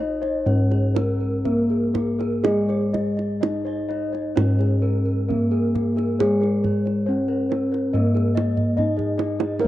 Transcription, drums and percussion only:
0.23 kendang slap
0.47 kendang slap
0.71 kendang slap
0.96 kendang high
1.45 kendang slap, kendang low
1.95 kendang slap, kendang high, kendang low
2.21 kendang slap
2.45 kendang high, kendang low
2.70 kendang slap
2.94 kendang slap, kendang high, kendang low
3.19 kendang slap
3.43 kendang high
3.91 kendang slap
4.15 kendang slap
4.37 kendang slap, kendang high
4.61 kendang slap
5.31 kendang slap, kendang low
5.75 kendang slap, kendang low
5.98 kendang slap
6.20 kendang high, kendang low
6.43 kendang slap
6.64 kendang slap, kendang low
6.87 kendang slap
7.52 kendang slap, kendang high
7.74 kendang slap
7.95 kendang slap
8.17 kendang slap
8.37 kendang high
8.57 kendang low
8.78 kendang low
8.99 kendang low
9.19 kendang high
9.40 kendang high
9.59 kendang high

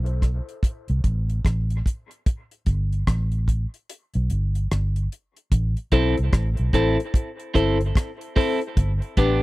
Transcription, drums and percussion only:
0.06 closed hi-hat
0.22 kick, cross-stick, closed hi-hat
0.49 closed hi-hat
0.63 kick, closed hi-hat
0.88 closed hi-hat
1.04 kick, closed hi-hat
1.30 closed hi-hat
1.45 kick, cross-stick, closed hi-hat
1.70 closed hi-hat
1.86 kick, closed hi-hat
2.11 closed hi-hat
2.26 kick, closed hi-hat
2.51 closed hi-hat
2.66 kick, closed hi-hat
2.93 closed hi-hat
3.07 kick, cross-stick, closed hi-hat
3.32 closed hi-hat
3.48 kick, closed hi-hat
3.74 closed hi-hat
3.90 closed hi-hat
4.14 closed hi-hat
4.30 closed hi-hat
4.55 closed hi-hat
4.71 cross-stick, closed hi-hat
4.96 closed hi-hat
5.12 closed hi-hat
5.36 closed hi-hat
5.52 kick, closed hi-hat
5.77 closed hi-hat
5.92 kick, closed hi-hat
6.17 closed hi-hat
6.33 kick, cross-stick, closed hi-hat
6.57 closed hi-hat
6.73 kick, closed hi-hat
7.00 closed hi-hat
7.14 kick, closed hi-hat
7.40 closed hi-hat
7.55 kick, closed hi-hat
7.81 closed hi-hat
7.95 kick, cross-stick, closed hi-hat
8.21 closed hi-hat
8.36 kick, open hi-hat
8.62 closed hi-hat
8.77 kick, closed hi-hat
9.02 closed hi-hat
9.17 kick, closed hi-hat

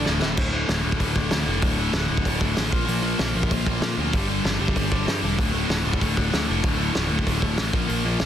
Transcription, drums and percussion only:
0.06 snare
0.22 snare
0.37 kick, crash
0.69 snare, open hi-hat
0.92 kick
1.00 kick, open hi-hat
1.16 kick
1.31 snare, open hi-hat
1.62 kick, open hi-hat
1.93 snare, open hi-hat
2.17 kick
2.25 kick, open hi-hat
2.41 kick
2.57 snare, open hi-hat
2.72 kick
2.88 open hi-hat
3.19 snare, open hi-hat
3.43 kick
3.51 kick, open hi-hat
3.66 kick
3.82 snare, open hi-hat
4.13 kick, open hi-hat
4.45 snare, open hi-hat
4.68 kick
4.76 kick, open hi-hat
4.92 kick
5.08 snare, open hi-hat
5.39 kick, open hi-hat
5.70 snare, open hi-hat
5.93 kick
6.01 kick, open hi-hat
6.17 kick
6.33 snare, open hi-hat
6.64 kick, open hi-hat
6.95 snare, open hi-hat
7.19 kick
7.27 kick, open hi-hat
7.42 kick
7.58 snare, open hi-hat
7.73 kick
7.89 open hi-hat
8.20 snare, open hi-hat

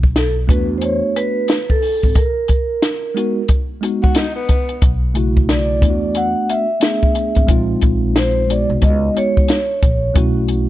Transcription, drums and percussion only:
0.03 kick
0.16 snare, closed hi-hat
0.49 kick, closed hi-hat
0.82 closed hi-hat
1.16 closed hi-hat
1.48 snare, closed hi-hat
1.70 kick
1.82 open hi-hat
2.03 kick
2.15 kick, closed hi-hat
2.48 kick, closed hi-hat
2.82 snare, closed hi-hat
3.17 closed hi-hat
3.48 kick, closed hi-hat
3.83 closed hi-hat
4.04 kick
4.15 snare, closed hi-hat
4.49 kick, closed hi-hat
4.69 closed hi-hat
4.82 kick, closed hi-hat
5.15 closed hi-hat
5.37 kick
5.49 snare, closed hi-hat
5.82 kick, closed hi-hat
6.15 closed hi-hat
6.50 closed hi-hat
6.81 snare, closed hi-hat
7.03 kick
7.15 closed hi-hat
7.35 kick, closed hi-hat
7.48 kick, closed hi-hat
7.81 kick, closed hi-hat
8.16 snare, closed hi-hat
8.50 closed hi-hat
8.82 kick, closed hi-hat
9.17 closed hi-hat
9.37 kick
9.48 snare, closed hi-hat
9.83 kick, closed hi-hat
10.16 kick, closed hi-hat
10.48 closed hi-hat

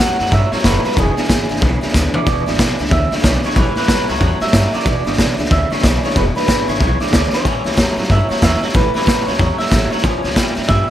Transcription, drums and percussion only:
0.19 snare
0.26 snare
0.32 kick, snare
0.52 snare
0.58 snare
0.64 kick, snare, hi-hat pedal
0.84 snare
0.91 snare
0.97 kick, snare
1.17 snare
1.23 snare
1.29 kick, snare, hi-hat pedal
1.49 snare
1.56 snare
1.62 kick, snare
1.82 snare
1.88 snare
1.94 kick, snare, hi-hat pedal
2.14 floor tom
2.26 kick, snare
2.47 snare
2.53 snare
2.59 kick, snare, hi-hat pedal
2.79 snare
2.85 snare
2.91 kick, snare
3.11 snare
3.18 snare
3.24 kick, snare, hi-hat pedal
3.43 snare
3.50 snare
3.56 kick, snare
3.76 snare
3.82 snare
3.88 kick, snare, hi-hat pedal
4.08 snare
4.14 snare
4.21 kick, snare
4.40 snare
4.47 snare
4.53 kick, snare, hi-hat pedal
4.73 snare
4.80 snare
4.86 kick, snare
5.06 snare
5.13 snare
5.18 kick, snare, hi-hat pedal
5.39 snare
5.45 snare
5.51 kick, snare
5.71 snare
5.78 snare
5.83 kick, snare, hi-hat pedal
6.04 snare
6.10 snare
6.16 kick, snare
6.36 snare
6.43 snare
6.48 kick, snare, hi-hat pedal
6.68 snare
6.75 snare
6.81 kick, snare
7.00 snare
7.07 snare
7.13 kick, snare, hi-hat pedal
7.33 snare
7.45 kick, snare
7.65 snare
7.72 snare
7.78 kick, snare, hi-hat pedal
7.98 snare
8.04 snare
8.10 kick, snare
8.30 snare
8.36 snare
8.42 kick, snare, hi-hat pedal
8.62 snare
8.69 snare
8.75 kick, snare
8.95 snare
9.01 snare
9.07 kick, snare, hi-hat pedal
9.28 snare
9.33 snare
9.39 kick, snare
9.59 snare
9.66 snare
9.71 kick, snare, hi-hat pedal
9.91 snare
9.98 snare
10.04 kick, snare
10.24 snare
10.30 snare
10.36 kick, snare, hi-hat pedal
10.56 snare
10.62 snare
10.69 kick, snare

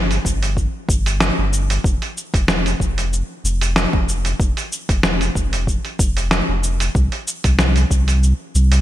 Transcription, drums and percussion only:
0.11 open hi-hat, cabasa
0.25 kick, cabasa
0.43 open hi-hat, cabasa
0.57 kick, cabasa
0.89 kick, cabasa
1.06 open hi-hat, cabasa
1.20 snare, cabasa
1.53 cabasa
1.70 open hi-hat, cabasa
1.84 kick, cabasa
2.02 open hi-hat
2.17 cabasa
2.34 kick, open hi-hat, cabasa
2.48 snare, cabasa
2.66 open hi-hat, cabasa
2.80 kick, cabasa
2.98 open hi-hat, cabasa
3.13 cabasa
3.45 cabasa
3.61 open hi-hat, cabasa
3.76 snare, cabasa
3.93 kick
4.09 cabasa
4.25 open hi-hat, cabasa
4.40 kick, cabasa
4.57 open hi-hat, cabasa
4.72 cabasa
4.89 kick, open hi-hat, cabasa
5.03 snare, cabasa
5.21 open hi-hat, cabasa
5.35 kick, cabasa
5.53 open hi-hat, cabasa
5.67 kick, cabasa
5.85 open hi-hat
5.99 kick, cabasa
6.17 open hi-hat, cabasa
6.31 snare, cabasa
6.64 cabasa
6.80 open hi-hat, cabasa
6.95 kick, cabasa
7.12 open hi-hat
7.28 cabasa
7.44 kick, open hi-hat, cabasa
7.59 snare, cabasa
7.76 open hi-hat, cabasa
7.91 kick, cabasa
8.08 open hi-hat, cabasa
8.23 cabasa
8.55 cabasa
8.72 open hi-hat, cabasa

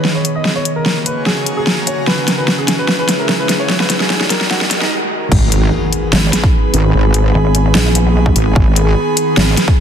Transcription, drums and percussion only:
0.05 snare
0.25 closed hi-hat
0.45 snare
0.65 closed hi-hat
0.86 snare
1.06 closed hi-hat
1.26 snare
1.46 closed hi-hat
1.67 snare
1.87 closed hi-hat
2.07 snare
2.28 snare, closed hi-hat
2.48 snare
2.68 snare, closed hi-hat
2.88 snare
3.09 snare, closed hi-hat
3.29 snare
3.49 snare, closed hi-hat
3.69 snare
3.80 snare
3.90 snare, closed hi-hat
4.00 snare
4.10 snare
4.21 snare
4.30 snare, closed hi-hat
4.41 snare
4.51 snare
4.61 snare
4.71 snare, closed hi-hat
4.81 snare
5.32 kick, crash
5.52 closed hi-hat
5.93 closed hi-hat
6.13 snare
6.33 snare, closed hi-hat
6.43 kick
6.74 closed hi-hat
7.14 closed hi-hat
7.55 closed hi-hat
7.75 snare
7.95 closed hi-hat
8.26 kick
8.36 closed hi-hat
8.56 kick
8.76 closed hi-hat
9.17 closed hi-hat
9.37 snare
9.57 snare, closed hi-hat
9.68 kick

